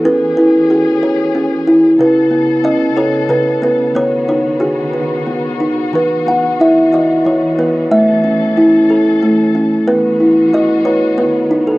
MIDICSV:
0, 0, Header, 1, 3, 480
1, 0, Start_track
1, 0, Tempo, 647948
1, 39, Time_signature, 3, 2, 24, 8
1, 2439, Tempo, 660066
1, 6279, Tempo, 649351
1, 8650, End_track
2, 0, Start_track
2, 0, Title_t, "Kalimba"
2, 0, Program_c, 0, 108
2, 38, Note_on_c, 0, 61, 80
2, 39, Note_on_c, 0, 71, 94
2, 266, Note_off_c, 0, 71, 0
2, 275, Note_on_c, 0, 71, 80
2, 282, Note_on_c, 0, 64, 61
2, 520, Note_on_c, 0, 66, 61
2, 524, Note_off_c, 0, 71, 0
2, 525, Note_on_c, 0, 68, 68
2, 763, Note_on_c, 0, 73, 67
2, 968, Note_off_c, 0, 66, 0
2, 990, Note_off_c, 0, 61, 0
2, 999, Note_on_c, 0, 61, 72
2, 1231, Note_off_c, 0, 64, 0
2, 1240, Note_on_c, 0, 64, 75
2, 1475, Note_on_c, 0, 49, 76
2, 1476, Note_off_c, 0, 61, 0
2, 1477, Note_off_c, 0, 64, 0
2, 1477, Note_off_c, 0, 73, 0
2, 1478, Note_off_c, 0, 68, 0
2, 1486, Note_on_c, 0, 71, 92
2, 1709, Note_on_c, 0, 59, 66
2, 1956, Note_on_c, 0, 61, 74
2, 1961, Note_on_c, 0, 75, 90
2, 1975, Note_off_c, 0, 71, 0
2, 2068, Note_off_c, 0, 75, 0
2, 2197, Note_on_c, 0, 69, 72
2, 2203, Note_on_c, 0, 73, 88
2, 2310, Note_off_c, 0, 73, 0
2, 2429, Note_off_c, 0, 49, 0
2, 2438, Note_on_c, 0, 49, 77
2, 2445, Note_on_c, 0, 71, 85
2, 2663, Note_off_c, 0, 71, 0
2, 2669, Note_off_c, 0, 59, 0
2, 2678, Note_on_c, 0, 59, 68
2, 2687, Note_on_c, 0, 71, 86
2, 2909, Note_off_c, 0, 59, 0
2, 2915, Note_off_c, 0, 49, 0
2, 2915, Note_off_c, 0, 61, 0
2, 2915, Note_off_c, 0, 69, 0
2, 2918, Note_on_c, 0, 59, 78
2, 2927, Note_off_c, 0, 71, 0
2, 2927, Note_on_c, 0, 73, 94
2, 3143, Note_off_c, 0, 73, 0
2, 3160, Note_on_c, 0, 63, 65
2, 3164, Note_on_c, 0, 73, 80
2, 3379, Note_off_c, 0, 73, 0
2, 3390, Note_on_c, 0, 66, 76
2, 3396, Note_on_c, 0, 68, 62
2, 3634, Note_on_c, 0, 71, 62
2, 3846, Note_off_c, 0, 68, 0
2, 3865, Note_off_c, 0, 59, 0
2, 3874, Note_on_c, 0, 59, 67
2, 4111, Note_off_c, 0, 63, 0
2, 4119, Note_on_c, 0, 63, 64
2, 4358, Note_on_c, 0, 52, 79
2, 4360, Note_off_c, 0, 66, 0
2, 4361, Note_off_c, 0, 59, 0
2, 4361, Note_off_c, 0, 63, 0
2, 4362, Note_off_c, 0, 71, 0
2, 4375, Note_on_c, 0, 71, 86
2, 4480, Note_off_c, 0, 71, 0
2, 4602, Note_on_c, 0, 59, 57
2, 4613, Note_on_c, 0, 78, 83
2, 4719, Note_off_c, 0, 78, 0
2, 4846, Note_on_c, 0, 64, 66
2, 4853, Note_on_c, 0, 76, 87
2, 5082, Note_on_c, 0, 66, 64
2, 5091, Note_on_c, 0, 75, 83
2, 5095, Note_off_c, 0, 76, 0
2, 5197, Note_off_c, 0, 75, 0
2, 5310, Note_off_c, 0, 52, 0
2, 5318, Note_on_c, 0, 52, 70
2, 5327, Note_on_c, 0, 73, 72
2, 5547, Note_off_c, 0, 73, 0
2, 5553, Note_off_c, 0, 59, 0
2, 5562, Note_on_c, 0, 59, 69
2, 5563, Note_on_c, 0, 71, 75
2, 5785, Note_off_c, 0, 71, 0
2, 5799, Note_off_c, 0, 52, 0
2, 5800, Note_off_c, 0, 66, 0
2, 5800, Note_on_c, 0, 57, 83
2, 5801, Note_off_c, 0, 59, 0
2, 5801, Note_on_c, 0, 76, 85
2, 5802, Note_off_c, 0, 64, 0
2, 6036, Note_on_c, 0, 61, 62
2, 6279, Note_on_c, 0, 64, 73
2, 6522, Note_on_c, 0, 69, 68
2, 6752, Note_off_c, 0, 57, 0
2, 6761, Note_on_c, 0, 57, 73
2, 6973, Note_off_c, 0, 76, 0
2, 6992, Note_off_c, 0, 61, 0
2, 7001, Note_on_c, 0, 61, 73
2, 7242, Note_on_c, 0, 71, 91
2, 7243, Note_off_c, 0, 57, 0
2, 7243, Note_off_c, 0, 61, 0
2, 7243, Note_off_c, 0, 64, 0
2, 7243, Note_on_c, 0, 59, 77
2, 7244, Note_off_c, 0, 69, 0
2, 7482, Note_on_c, 0, 64, 63
2, 7729, Note_on_c, 0, 66, 74
2, 7734, Note_on_c, 0, 75, 94
2, 7737, Note_off_c, 0, 71, 0
2, 7839, Note_off_c, 0, 75, 0
2, 7963, Note_on_c, 0, 73, 83
2, 7964, Note_on_c, 0, 71, 73
2, 8196, Note_off_c, 0, 59, 0
2, 8196, Note_off_c, 0, 71, 0
2, 8201, Note_off_c, 0, 64, 0
2, 8204, Note_off_c, 0, 66, 0
2, 8205, Note_on_c, 0, 59, 73
2, 8205, Note_on_c, 0, 71, 84
2, 8209, Note_off_c, 0, 73, 0
2, 8449, Note_on_c, 0, 63, 73
2, 8538, Note_off_c, 0, 71, 0
2, 8570, Note_on_c, 0, 69, 76
2, 8622, Note_off_c, 0, 69, 0
2, 8650, Note_off_c, 0, 59, 0
2, 8650, Note_off_c, 0, 63, 0
2, 8650, End_track
3, 0, Start_track
3, 0, Title_t, "String section"
3, 0, Program_c, 1, 48
3, 0, Note_on_c, 1, 52, 62
3, 35, Note_on_c, 1, 68, 78
3, 38, Note_on_c, 1, 61, 58
3, 1449, Note_off_c, 1, 52, 0
3, 1458, Note_off_c, 1, 68, 0
3, 1460, Note_off_c, 1, 61, 0
3, 1485, Note_on_c, 1, 69, 74
3, 1486, Note_on_c, 1, 49, 71
3, 1486, Note_on_c, 1, 59, 58
3, 2906, Note_off_c, 1, 69, 0
3, 2907, Note_off_c, 1, 49, 0
3, 2919, Note_on_c, 1, 51, 71
3, 2920, Note_on_c, 1, 66, 78
3, 4347, Note_off_c, 1, 51, 0
3, 4365, Note_on_c, 1, 52, 66
3, 5774, Note_off_c, 1, 66, 0
3, 5778, Note_off_c, 1, 59, 0
3, 5794, Note_on_c, 1, 61, 60
3, 5794, Note_on_c, 1, 69, 72
3, 7217, Note_off_c, 1, 52, 0
3, 7226, Note_off_c, 1, 61, 0
3, 7226, Note_off_c, 1, 69, 0
3, 7248, Note_on_c, 1, 59, 59
3, 7249, Note_on_c, 1, 66, 76
3, 7251, Note_on_c, 1, 52, 72
3, 8196, Note_off_c, 1, 52, 0
3, 8208, Note_on_c, 1, 51, 61
3, 8650, Note_off_c, 1, 51, 0
3, 8650, Note_off_c, 1, 59, 0
3, 8650, Note_off_c, 1, 66, 0
3, 8650, End_track
0, 0, End_of_file